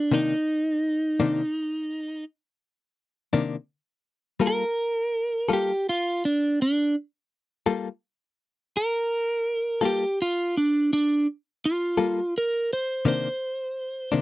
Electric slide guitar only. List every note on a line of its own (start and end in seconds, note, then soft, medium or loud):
0.00 0.11 D4 medium
0.14 2.24 D#4 medium
4.47 5.49 A#4 medium
5.53 5.86 G4 medium
5.89 6.22 F4 medium
6.25 6.58 D4 medium
6.62 6.95 D4 medium
8.77 9.80 A#4 medium
9.85 10.18 G4 medium
10.22 10.55 F4 medium
10.57 10.90 D4 medium
10.93 11.26 D4 medium
11.65 12.33 F4 medium
12.38 12.71 A#4 medium
12.73 13.06 C5 medium
13.08 14.21 C5 medium